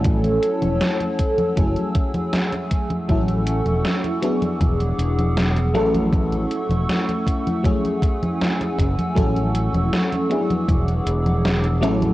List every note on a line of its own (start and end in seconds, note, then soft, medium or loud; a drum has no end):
0.00 0.37 A1 loud
0.00 1.49 F#3 medium
0.00 1.50 A3 medium
0.00 1.50 C#4 medium
0.00 1.51 E4 medium
0.00 1.51 A4 loud
0.00 1.55 C#5 medium
0.00 3.05 F#5 medium
0.00 1.56 A5 medium
0.00 5.71 E6 medium
0.04 kick loud
0.04 closed hi-hat medium
0.04 high conga soft
0.24 closed hi-hat soft
0.24 high conga soft
0.43 closed hi-hat medium
0.62 0.78 E1 medium
0.62 closed hi-hat soft
0.62 high conga medium
0.81 snare loud
0.81 closed hi-hat medium
0.81 high conga soft
1.00 closed hi-hat soft
1.00 high conga soft
1.19 kick medium
1.19 closed hi-hat medium
1.38 closed hi-hat soft
1.38 high conga medium
1.56 1.73 F#1 medium
1.56 3.01 F#3 medium
1.56 3.01 A3 medium
1.56 4.20 A3 medium
1.56 3.02 C#4 medium
1.56 3.02 E4 medium
1.56 3.02 G#4 medium
1.56 3.07 G#5 medium
1.56 kick loud
1.56 closed hi-hat medium
1.56 high conga soft
1.76 closed hi-hat soft
1.76 high conga soft
1.95 kick loud
1.95 closed hi-hat loud
2.14 closed hi-hat soft
2.14 high conga medium
2.33 snare loud
2.33 closed hi-hat medium
2.33 high conga soft
2.52 closed hi-hat soft
2.52 high conga soft
2.71 kick medium
2.71 closed hi-hat medium
2.90 closed hi-hat soft
2.90 high conga medium
3.08 3.61 A1 loud
3.08 4.15 F#3 medium
3.08 4.15 A3 medium
3.08 4.16 C#4 medium
3.08 4.16 E4 medium
3.08 4.17 A4 medium
3.08 4.22 F#5 medium
3.08 4.22 C#6 medium
3.08 kick loud
3.08 closed hi-hat medium
3.08 high conga soft
3.28 closed hi-hat soft
3.28 high conga soft
3.47 closed hi-hat medium
3.66 3.81 E1 medium
3.66 closed hi-hat soft
3.66 high conga soft
3.85 snare loud
3.85 closed hi-hat medium
3.85 high conga soft
4.04 closed hi-hat soft
4.04 high conga soft
4.22 5.67 F#3 medium
4.22 5.67 B3 medium
4.22 5.68 D4 medium
4.22 5.68 E4 medium
4.22 5.73 G#4 medium
4.22 5.68 G#4 medium
4.22 12.13 F#5 medium
4.22 5.73 D6 medium
4.22 closed hi-hat medium
4.42 closed hi-hat soft
4.42 high conga medium
4.61 4.92 E1 medium
4.61 kick loud
4.61 closed hi-hat medium
4.61 high conga soft
4.80 closed hi-hat soft
4.80 high conga soft
4.99 5.74 E1 loud
4.99 closed hi-hat medium
5.19 closed hi-hat soft
5.19 high conga medium
5.37 snare loud
5.37 closed hi-hat medium
5.37 high conga soft
5.56 closed hi-hat soft
5.56 high conga soft
5.74 6.45 A1 loud
5.74 7.57 F#3 medium
5.74 7.57 A3 medium
5.74 10.27 A3 medium
5.74 7.57 C#4 medium
5.74 7.58 E4 medium
5.74 7.58 A4 loud
5.74 7.63 C#6 medium
5.74 11.79 E6 medium
5.74 closed hi-hat medium
5.95 closed hi-hat soft
5.95 high conga medium
6.13 kick loud
6.13 closed hi-hat medium
6.13 high conga soft
6.33 closed hi-hat soft
6.33 high conga soft
6.51 closed hi-hat medium
6.69 6.85 E1 medium
6.69 closed hi-hat soft
6.69 high conga medium
6.89 snare loud
6.89 closed hi-hat medium
6.89 high conga soft
7.09 closed hi-hat soft
7.09 high conga soft
7.27 kick medium
7.27 closed hi-hat medium
7.47 closed hi-hat soft
7.47 high conga medium
7.63 9.08 F#3 medium
7.63 9.09 A3 medium
7.63 9.09 C#4 medium
7.63 9.10 E4 medium
7.63 9.10 G#4 medium
7.63 9.15 G#5 medium
7.63 kick loud
7.63 closed hi-hat medium
7.63 high conga soft
7.85 closed hi-hat soft
7.85 high conga soft
8.03 kick loud
8.03 closed hi-hat loud
8.23 closed hi-hat soft
8.23 high conga medium
8.42 snare loud
8.42 closed hi-hat medium
8.42 high conga soft
8.61 closed hi-hat soft
8.61 high conga soft
8.79 8.94 F#1 loud
8.79 kick medium
8.79 closed hi-hat medium
8.99 closed hi-hat soft
8.99 high conga medium
9.15 9.68 A1 loud
9.15 10.22 F#3 medium
9.15 10.23 A3 medium
9.15 10.23 C#4 medium
9.15 10.23 E4 medium
9.15 10.24 A4 medium
9.15 10.29 C#6 medium
9.15 kick loud
9.15 closed hi-hat medium
9.15 high conga soft
9.37 closed hi-hat soft
9.37 high conga soft
9.55 closed hi-hat medium
9.73 9.89 E1 medium
9.73 closed hi-hat soft
9.73 high conga medium
9.93 snare loud
9.93 closed hi-hat medium
9.93 high conga soft
10.13 closed hi-hat soft
10.13 high conga soft
10.29 11.74 F#3 medium
10.29 11.75 B3 medium
10.29 11.75 D4 medium
10.29 11.76 E4 medium
10.29 11.81 G#4 medium
10.29 11.76 G#4 medium
10.29 11.81 D6 medium
10.29 closed hi-hat medium
10.50 closed hi-hat soft
10.50 high conga medium
10.68 10.99 E1 medium
10.68 kick loud
10.68 closed hi-hat medium
10.68 high conga soft
10.88 closed hi-hat soft
10.88 high conga soft
11.06 11.82 E1 loud
11.06 closed hi-hat loud
11.26 closed hi-hat soft
11.26 high conga medium
11.45 snare loud
11.45 closed hi-hat medium
11.45 high conga soft
11.64 closed hi-hat soft
11.64 high conga soft
11.81 12.13 A1 loud
11.81 12.13 F#3 medium
11.81 12.13 A3 medium
11.81 12.13 C#4 medium
11.81 12.13 E4 medium
11.81 12.13 A4 medium
11.81 12.13 A4 loud
11.81 12.13 C#6 medium
11.81 12.13 E6 medium
11.81 closed hi-hat medium
12.02 closed hi-hat soft
12.02 high conga medium